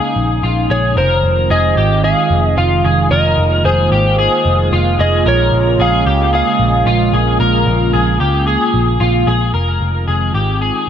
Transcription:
Already playing: analog synth pad C#3 G#3 A#3 D#4, clean electric guitar G#4, electric slide guitar F5
0.16 picked electric bass A#1
0.43 picked electric bass A#1, clean electric guitar F4
0.70 picked electric bass A#1, clean electric guitar G#4, electric slide guitar C#5
0.97 picked electric bass F1, analog synth pad D#3 G#3 C4 F4, clean electric guitar A#4, electric slide guitar C5
1.23 picked electric bass F1
1.50 picked electric bass F1, clean electric guitar G#4, electric slide guitar D#5
1.77 picked electric bass G#1, clean electric guitar G4
2.04 clean electric guitar G#4, electric slide guitar F5
2.30 picked electric bass F1
2.57 picked electric bass F1, clean electric guitar F4, electric slide guitar F5
2.84 picked electric bass F1, clean electric guitar G#4
3.11 picked electric bass F1, analog synth pad A#3, clean electric guitar A#4, electric slide guitar D#5
3.38 picked electric bass F1
3.65 picked electric bass F1, clean electric guitar G#4, electric slide guitar C5
3.92 picked electric bass G#1, clean electric guitar G4
4.19 clean electric guitar G#4
4.45 picked electric bass F1
4.72 picked electric bass F1, clean electric guitar F4
4.99 picked electric bass F1, clean electric guitar G#4, electric slide guitar D#5
5.26 picked electric bass A#1, analog synth pad C#3, clean electric guitar A#4, electric slide guitar C#5
5.52 picked electric bass A#1
5.79 picked electric bass A#1, clean electric guitar G#4, electric slide guitar F5
6.06 picked electric bass C#2, clean electric guitar G4
6.33 clean electric guitar G#4, electric slide guitar F5
6.60 picked electric bass A#1
6.86 picked electric bass A#1, clean electric guitar F4
7.13 picked electric bass A#1, clean electric guitar G#4
7.40 picked electric bass A#1, clean electric guitar A#4
7.66 picked electric bass A#1
7.93 picked electric bass A#1, clean electric guitar G#4
8.20 picked electric bass C#2, clean electric guitar G4
8.47 clean electric guitar G#4
8.74 picked electric bass A#1
9.00 picked electric bass A#1, clean electric guitar F4
9.27 picked electric bass A#1, clean electric guitar G#4
9.54 picked electric bass F1, analog synth pad D#3 G#3 C4 F4, clean electric guitar A#4
9.81 picked electric bass F1
10.08 picked electric bass F1, clean electric guitar G#4
10.34 picked electric bass G#1, clean electric guitar G4
10.62 clean electric guitar G#4

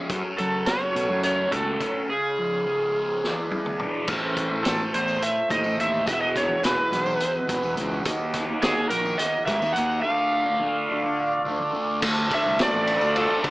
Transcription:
Already playing: distorted electric guitar C#4, harmonium C#4
0.09 fingered electric bass F#2, distorted electric guitar F#2, harmonium A3 F#4 C#5, kick, closed hi-hat
0.38 distorted electric guitar C#3, fingered electric bass F#3, electric slide guitar A4, closed hi-hat
0.66 distorted electric guitar F#3, electric slide guitar C#5, snare, closed hi-hat
0.95 fingered electric bass B2, distorted electric guitar A3, closed hi-hat
1.09 fingered electric bass F#2
1.23 distorted electric guitar C#4, electric slide guitar C#5, closed hi-hat
1.52 fingered electric bass C#2, distorted electric guitar F#3, electric slide guitar A4, kick, closed hi-hat
1.80 distorted electric guitar C#4, kick, closed hi-hat
2.09 distorted electric guitar C#3, harmonium G#3 F4, electric slide guitar G#4
2.38 distorted electric guitar F3
2.66 distorted electric guitar F3
2.95 distorted electric guitar G#3
3.23 distorted electric guitar E2, harmonium D4 E4 B4, snare
3.51 distorted electric guitar E3, high tom
3.66 mid tom
3.79 distorted electric guitar D4, mid tom
4.07 fingered electric bass A1, distorted electric guitar A2 E3 A3, harmonium A3 C4 E4 C5, kick, crash, tambourine
4.37 kick, closed hi-hat
4.50 distorted electric guitar E3 A3
4.63 fingered electric bass A1, distorted electric guitar A2 E3 A3, electric slide guitar A4, snare, closed hi-hat, tambourine
4.92 fingered electric bass E2, distorted electric guitar A2 E3 A3, electric slide guitar C5, closed hi-hat, tambourine
5.08 muted distorted electric guitar stroke, tambourine
5.22 electric slide guitar E5, closed hi-hat
5.35 tambourine
5.50 fingered electric bass D#2, distorted electric guitar A2 E3 A3, electric slide guitar D#5, kick, closed hi-hat
5.64 fingered electric bass A1, muted distorted electric guitar stroke, tambourine
5.78 fingered electric bass D#2, distorted electric guitar A2 E3 A3, electric slide guitar E5, closed hi-hat
5.93 tambourine
6.05 fingered electric bass E1, distorted electric guitar E2 B2 E3, harmonium G#3 F#4 B4, electric slide guitar D#5, kick, closed hi-hat, tambourine
6.13 electric slide guitar E5
6.21 electric slide guitar D#5
6.36 electric slide guitar C#5, kick, snare, closed hi-hat
6.48 distorted electric guitar B2 E3
6.62 fingered electric bass E1, distorted electric guitar E2 B2 E3, electric slide guitar B4, snare, closed hi-hat, tambourine
6.91 fingered electric bass B1, distorted electric guitar E2 B2 E3, snare, closed hi-hat, tambourine
7.06 muted distorted electric guitar stroke, tambourine
7.20 closed hi-hat, tambourine
7.26 electric slide guitar C5
7.34 electric slide guitar B4, tambourine
7.47 fingered electric bass G#1, distorted electric guitar E2 B2 E3, kick, closed hi-hat
7.63 fingered electric bass E1, muted distorted electric guitar stroke, tambourine
7.76 fingered electric bass C#2, distorted electric guitar E2 B2 E3, closed hi-hat
7.91 tambourine
8.04 fingered electric bass D#2, distorted electric guitar D#3 A#3 D#4, harmonium A#3 D#4 F#4 C#5, kick, closed hi-hat, tambourine
8.20 tambourine
8.34 kick, snare, closed hi-hat
8.47 distorted electric guitar A#3 D#4
8.61 fingered electric bass D#2, distorted electric guitar D#3 A#3 D#4, electric slide guitar G#4, snare, closed hi-hat, tambourine
8.89 fingered electric bass A#1, distorted electric guitar D#3 A#3 D#4, electric slide guitar A#4, closed hi-hat, tambourine
9.04 muted distorted electric guitar stroke, tambourine
9.18 electric slide guitar D#5, snare, closed hi-hat, tambourine
9.34 tambourine
9.45 fingered electric bass G#2, distorted electric guitar D#3 A#3 D#4, electric slide guitar E5, kick, snare, closed hi-hat
9.61 fingered electric bass D#2, muted distorted electric guitar stroke, tambourine
9.73 fingered electric bass D#2, distorted electric guitar D#3 A#3, electric slide guitar F#5, closed hi-hat
9.78 distorted electric guitar D#4
9.91 tambourine
10.02 distorted electric guitar D3 A3 D4, harmonium A3 D4 F4 D5, electric slide guitar F5
10.46 distorted electric guitar A3 D4
10.60 distorted electric guitar D3 A3 D4
10.89 distorted electric guitar D3 A3 D4
11.03 muted distorted electric guitar stroke
11.45 distorted electric guitar D3 A3 D4
11.60 muted distorted electric guitar stroke
11.72 distorted electric guitar D3 A3 D4
12.02 fingered electric bass D2, distorted electric guitar D3, harmonium F3 A3 D4 A4, kick, crash, tambourine
12.30 distorted electric guitar A3, kick, ride
12.34 electric slide guitar E5
12.46 fingered electric bass C2
12.59 distorted electric guitar D3, electric slide guitar D5, snare, ride, tambourine
12.74 fingered electric bass A1
12.87 distorted electric guitar D4, ride
13.01 fingered electric bass D2, tambourine
13.15 distorted electric guitar F4, electric slide guitar A4, ride
13.44 fingered electric bass D3, distorted electric guitar D4, electric slide guitar A4, kick, ride

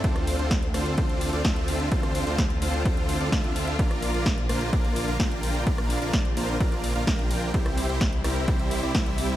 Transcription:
0.04 detuned saw bass D2, string section D3 C4 F4, supersaw synth D4 F4, kick, closed hi-hat, ride
0.16 cross-stick, closed hi-hat
0.27 open hi-hat, ride
0.39 detuned saw bass D2, supersaw synth C4 D4 F4 A4 C5, closed hi-hat
0.51 kick, snare, closed hi-hat, ride
0.63 closed hi-hat
0.74 detuned saw bass D2, supersaw synth C4 D4 F4 A4 C5, cross-stick, open hi-hat, ride
0.86 closed hi-hat
0.98 detuned saw bass D2, supersaw synth C4 D4 F4 A4 C5, kick, closed hi-hat, ride
1.09 closed hi-hat
1.21 open hi-hat, ride
1.33 detuned saw bass D2, supersaw synth C4 D4 F4 A4 D5, closed hi-hat
1.45 detuned saw bass D2, supersaw synth C4 A4 E5, kick, snare, closed hi-hat, ride
1.56 closed hi-hat
1.68 open hi-hat, ride
1.80 closed hi-hat
1.92 detuned saw bass D2, supersaw synth C4 D4 F4 A4 C5, kick, closed hi-hat, ride
2.03 cross-stick, closed hi-hat
2.15 open hi-hat, ride
2.27 detuned saw bass D2, supersaw synth C4 D4 F4 A4 C5, closed hi-hat
2.38 kick, snare, closed hi-hat, ride
2.50 closed hi-hat
2.62 detuned saw bass D2, supersaw synth C4 D4 F4 A4 C5, open hi-hat, ride
2.74 closed hi-hat
2.85 detuned saw bass D2, supersaw synth C4 D4 F4 A4, kick, closed hi-hat, ride
2.97 closed hi-hat
3.09 open hi-hat, ride
3.21 detuned saw bass D2, supersaw synth C4 D4 F4 A4 D5, closed hi-hat
3.32 detuned saw bass D2, supersaw synth C4 F4 E5, kick, snare, closed hi-hat, ride
3.44 closed hi-hat
3.56 open hi-hat, ride
3.68 closed hi-hat
3.79 detuned saw bass A#1, string section D3 A#3, supersaw synth A#3 D4 F4 A#4 D5, kick, closed hi-hat, ride
3.91 cross-stick, closed hi-hat
4.02 open hi-hat, ride
4.14 detuned saw bass A#1, supersaw synth A#3 D4 F4 A#4 D5, closed hi-hat
4.26 kick, snare, closed hi-hat, ride
4.38 closed hi-hat
4.49 detuned saw bass A#1, supersaw synth A#3 D4 F4 A#4 C5, cross-stick, open hi-hat, ride
4.61 closed hi-hat
4.73 detuned saw bass A#1, supersaw synth A#3 D4 F4 D5, kick, closed hi-hat, ride
4.85 closed hi-hat
4.96 open hi-hat, ride
5.08 detuned saw bass A#1, supersaw synth A#3 D4 F4 A#4 F5, closed hi-hat
5.20 detuned saw bass A#1, supersaw synth A#3 D4 F4, kick, snare, closed hi-hat, ride
5.32 closed hi-hat
5.43 open hi-hat, ride
5.55 closed hi-hat
5.67 detuned saw bass A#1, supersaw synth A#3 D4 F4 A#4 D5, string section C4, kick, closed hi-hat, ride
5.78 cross-stick, closed hi-hat
5.90 open hi-hat, ride
6.02 detuned saw bass A#1, supersaw synth A#3 D4 F4 A#4 D5, closed hi-hat
6.13 kick, snare, closed hi-hat, ride
6.25 closed hi-hat
6.37 detuned saw bass A#1, supersaw synth A#3 D4 F4 A#4 C5, open hi-hat, ride
6.49 closed hi-hat
6.60 detuned saw bass A#1, supersaw synth A#3 D4 F4 A#4 D5, kick, closed hi-hat, ride
6.72 closed hi-hat
6.84 open hi-hat, ride
6.96 detuned saw bass A#1, supersaw synth A#3 D4 F4 A#4 F5, closed hi-hat
7.07 detuned saw bass A#1, kick, snare, closed hi-hat, ride
7.19 closed hi-hat
7.31 open hi-hat, ride
7.42 closed hi-hat
7.54 detuned saw bass C2, string section C3 G3 E4, supersaw synth G3 C4 E4 G4 C5, kick, closed hi-hat, ride
7.66 cross-stick, closed hi-hat
7.78 open hi-hat, ride
7.89 detuned saw bass C2, supersaw synth G3 C4 E4 G4 C5, closed hi-hat
8.01 kick, snare, closed hi-hat, ride
8.13 closed hi-hat
8.24 detuned saw bass C2, supersaw synth G3 C4 E4 G4 A#4, cross-stick, open hi-hat, ride
8.36 closed hi-hat
8.48 detuned saw bass C2, supersaw synth G3 C4 E4 G4 C5, kick, closed hi-hat, ride
8.59 closed hi-hat
8.71 open hi-hat, ride
8.83 detuned saw bass C2, supersaw synth G3 C4 E4 G4 D5, closed hi-hat
8.95 detuned saw bass C2, kick, snare, closed hi-hat, ride
9.06 closed hi-hat
9.18 open hi-hat, ride
9.30 closed hi-hat

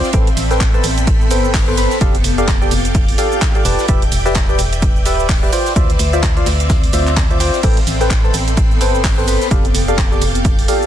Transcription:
Already playing: ambient pad C4 D5 E5 F5, synth stab F4 C5 D5 G5, string machine D5 C6 D6 E6
0.04 snare, closed hi-hat, shaker
0.13 fm bass A1, ambient pad B3, synth stab A4 B4 C5 G5, string machine A4 G5 B5, kick, closed hi-hat, ride, shaker
0.27 closed hi-hat, ride, shaker
0.35 fm bass A1, ambient pad A4, open hi-hat, ride, shaker
0.51 synth stab A4 B4 C5 G5, snare, closed hi-hat, shaker
0.60 kick, snare, clap, closed hi-hat, ride, shaker
0.74 synth stab A4 B4 C5 A5, shaker
0.84 fm bass A1, open hi-hat, ride, shaker
0.97 ambient pad G5, closed hi-hat, ride, shaker
1.07 kick, closed hi-hat, ride, shaker
1.21 shaker
1.31 fm bass G1, synth stab A4 B4 C5 G5, open hi-hat, ride, shaker
1.45 shaker
1.54 kick, snare, clap, open hi-hat, shaker
1.68 synth stab A4 B4 C5 G5, shaker
1.77 synth stab A4 B4 C5 B5, open hi-hat, ride, shaker
1.91 snare, closed hi-hat, shaker
2.01 fm bass F1, ambient pad F4, synth stab G4 A4 D5 F5, string machine F5 D6 G6 A6, kick, closed hi-hat, ride, shaker
2.15 ambient pad D5, closed hi-hat, shaker
2.24 fm bass F1, open hi-hat, ride, shaker
2.38 synth stab G4 A4 D5 F5, closed hi-hat, shaker
2.48 kick, snare, clap, closed hi-hat, ride, shaker
2.62 synth stab G4 A4 D5 G5, shaker
2.71 fm bass F1, open hi-hat, ride, shaker
2.85 closed hi-hat, shaker
2.95 kick, closed hi-hat, ride, shaker
3.08 open hi-hat, shaker
3.18 synth stab G4 A4 D5 F5, open hi-hat, ride, shaker
3.32 shaker
3.41 kick, snare, clap, closed hi-hat, ride, shaker
3.55 synth stab G4 A4 D5 F5, ride, shaker
3.65 fm bass E1, synth stab G4 B4 D5 A5, string machine E5 G6, ambient pad E5, open hi-hat, ride, shaker
3.79 snare, closed hi-hat, shaker
3.88 fm bass E1, synth stab G4 B4 D5 E5, kick, closed hi-hat, ride, shaker
3.94 ambient pad B4
4.02 closed hi-hat, ride, shaker
4.12 fm bass E1, open hi-hat, ride, shaker
4.26 synth stab G4 B4 D5 E5, snare, closed hi-hat, shaker
4.35 kick, snare, clap, closed hi-hat, ride, shaker
4.49 synth stab G4 B4 D5 G5, shaker
4.58 fm bass E1, open hi-hat, ride, shaker
4.73 closed hi-hat, ride, shaker
4.82 kick, closed hi-hat, ride, shaker
4.96 shaker
5.05 fm bass D1, synth stab G4 B4 D5 E5, open hi-hat, ride, shaker
5.20 shaker
5.29 kick, snare, clap, open hi-hat, shaker
5.43 synth stab G4 B4 D5 E5, shaker
5.53 synth stab F4 C5 D5 G5, string machine D5 C6 D6 E6, open hi-hat, ride, shaker
5.58 ambient pad C4
5.66 snare, closed hi-hat, shaker
5.76 fm bass D2, synth stab F4 C5 D5 E5, ambient pad F5, kick, closed hi-hat, ride, shaker
5.90 closed hi-hat, shaker
5.99 fm bass D2, open hi-hat, ride, shaker
6.13 synth stab F4 C5 D5 E5, closed hi-hat, shaker
6.22 kick, snare, clap, closed hi-hat, ride, shaker
6.37 synth stab F4 C5 D5 F5, closed hi-hat, shaker
6.46 fm bass D2, snare, open hi-hat, ride, shaker
6.60 closed hi-hat, shaker
6.70 kick, snare, closed hi-hat, ride, shaker
6.83 open hi-hat, shaker
6.93 fm bass D2, synth stab F4 C5 D5 E5, open hi-hat, ride, shaker
7.07 clap, closed hi-hat, shaker
7.17 kick, snare, clap, closed hi-hat, ride, shaker
7.30 synth stab F4 C5 D5 E5, ride, shaker
7.40 synth stab F4 C5 D5 G5, snare, open hi-hat, ride, shaker
7.53 snare, closed hi-hat, shaker
7.63 fm bass A1, ambient pad B3, synth stab A4 B4 C5 G5, string machine A4 G5 B5, kick, closed hi-hat, ride, crash, shaker
7.77 closed hi-hat, ride, shaker
7.87 fm bass A1, ambient pad A4, open hi-hat, ride, shaker
8.01 synth stab A4 B4 C5 G5, snare, closed hi-hat, shaker
8.10 kick, snare, clap, closed hi-hat, ride, shaker
8.24 synth stab A4 B4 C5 A5, shaker
8.34 fm bass A1, ambient pad G5, open hi-hat, ride, shaker
8.47 closed hi-hat, ride, shaker
8.57 kick, closed hi-hat, ride, shaker
8.71 shaker
8.81 fm bass G1, synth stab A4 B4 C5 G5, open hi-hat, ride, shaker
8.95 shaker
9.04 kick, snare, clap, open hi-hat, shaker
9.18 synth stab A4 B4 C5 G5, shaker
9.28 synth stab A4 B4 C5 B5, open hi-hat, ride, shaker
9.42 snare, closed hi-hat, shaker
9.51 fm bass F1, ambient pad F4, synth stab G4 A4 D5 F5, string machine F5 D6 G6 A6, kick, closed hi-hat, ride, shaker
9.65 closed hi-hat, shaker
9.75 fm bass F1, open hi-hat, ride, shaker
9.88 synth stab G4 A4 D5 F5, closed hi-hat, shaker
9.98 kick, snare, clap, closed hi-hat, ride, shaker
10.12 synth stab G4 A4 D5 G5, shaker
10.21 fm bass F1, ambient pad D5, open hi-hat, ride, shaker
10.35 closed hi-hat, shaker
10.45 kick, closed hi-hat, ride, shaker
10.59 open hi-hat, shaker
10.68 synth stab G4 A4 D5 F5, open hi-hat, ride, shaker
10.82 shaker

